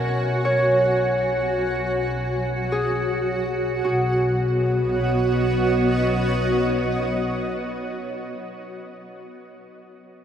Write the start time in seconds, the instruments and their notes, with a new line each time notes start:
Already playing: double bass section B1, synth texture B3 B4, ambient pad F#4 C#5 G#5, harp A#4 B4 D#5 E5
0.45 harp C#5
2.72 harp G#4
3.84 double bass section B1, ambient pad B3, harp F#4
4.04 ambient pad F#4
4.19 ambient pad C#5
4.36 ambient pad D#5